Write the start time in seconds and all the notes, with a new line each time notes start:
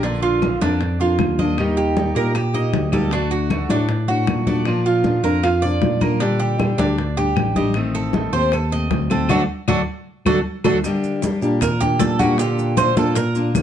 Already playing: A#1
0.03 D3 A#3 D4 F4, high bongo, high conga
0.23 F4, high conga
0.42 D3 A#3 D4 F4, high bongo, high conga, claves
0.61 F2 A#3 D4 F4, high bongo, high conga
0.81 muted steel-string acoustic guitar stroke, high bongo, high conga
1.00 F2 A#3 D4 F4, high bongo, high conga
1.19 D#2, high bongo, low bongo, high conga, claves
1.38 A#3 D4 F4 D#5, high bongo, high conga
1.58 D#3 G3 A#3 D#4 G4, high bongo, high conga, claves
1.77 G4, high conga
1.96 G3 A#3 D#4 G4, high bongo, high conga
2.15 A#2 G3 A#3 D#4 G4 A#4, high bongo, high conga
2.35 G4, muted steel-string acoustic guitar stroke, high bongo, high conga, claves
2.54 A#3 D#4 G4 D#5, high bongo, high conga
2.73 D2, high bongo, low bongo, high conga
2.92 G3 A#3 D#4 G4 A4, high bongo, high conga, claves
3.11 D3 A3 D4 F#4, high bongo, high conga
3.31 F#4, high conga
3.50 D3 A3 D4 F#4, high bongo, high conga, claves
3.69 A2 A3 D4 F#4, high bongo, high conga
3.88 muted steel-string acoustic guitar stroke, high bongo, high conga
4.08 A2 A3 D4 F#4, high bongo, high conga
4.27 A#2, high bongo, low bongo, high conga, claves
4.47 A3 D4 F#4 D5, high bongo, high conga
4.65 F3 A#3 D4 F4, high bongo, claves
4.85 F4, high conga
5.04 F3 A#3 D4 F4, high bongo, high conga
5.24 F2 A#3 D4 F4 A#4, high bongo, high conga
5.43 F4, muted steel-string acoustic guitar stroke, high bongo, high conga, claves
5.62 A#3 D4 F4 D5, high bongo, high conga
5.82 A#2, high bongo, low bongo, high conga
6.01 A#3 D4 F4 A#4, high bongo, high conga, claves
6.20 D3 G3 D4 G4, high bongo
6.40 G4, high conga
6.58 D3 G3 D4 G4, high bongo, high conga, claves
6.78 D2 G3 D4 G4, high bongo, high conga
6.98 muted steel-string acoustic guitar stroke, high bongo, high conga
7.17 G3 D4 G4, high bongo, high conga
7.36 A1, high bongo, low bongo, high conga, claves
7.55 G3 D4 G4 D#5, high bongo, high conga
7.74 D#3 A3 C4, high bongo, high conga, claves
7.95 A4, high conga
8.13 D#3 A3 C4, high bongo, high conga
8.33 D#2 A3 C4 C5, high bongo, high conga
8.52 A4, muted steel-string acoustic guitar stroke, high bongo, high conga, claves
8.71 A3 C4 D#5, high bongo, high conga
8.90 D2, high bongo, low bongo, high conga
9.10 A3 C4 A4, high bongo, high conga, claves
9.29 D2 F#3 A3 D4 F#4 A4, low bongo, high conga, claves
9.68 D2 F#3 A3 D4 F#4 A4, low bongo, high conga, claves
10.26 D2 F#3 A3 D4 F#4 A4, low bongo, high conga, claves
10.64 D2 F#3 A3 D4 F#4 A4, low bongo, high conga, claves
10.84 D3 G3 A#3 D4 G4, high bongo, high conga, claves, maracas
11.04 high conga, maracas
11.22 G3 A#3 D4 G4, high bongo, high conga, maracas
11.41 A#2 G3 A#3 D4 G4, high bongo, high conga, maracas
11.61 A#4, muted steel-string acoustic guitar stroke, high bongo, high conga, low conga, claves, maracas
11.80 A#3 D4 G4, high bongo, high conga, low conga, maracas
11.99 A#2 A4, high bongo, low bongo, high conga, maracas
12.19 G3 A#3 D4 F#4 G4, high bongo, high conga, claves, maracas
12.38 D3 A#3 D4 F4 G4, high bongo, maracas
12.58 high conga, maracas
12.77 D3 A#3 D4 F4 C5, high bongo, high conga, claves, maracas
12.96 A#2 A#3 D4 F4 A4, high bongo, high conga, maracas
13.15 A#4, muted steel-string acoustic guitar stroke, high bongo, high conga, maracas
13.35 A#3 D4 F4, high bongo, high conga, maracas
13.55 D#2, high bongo, low bongo, high conga, claves, maracas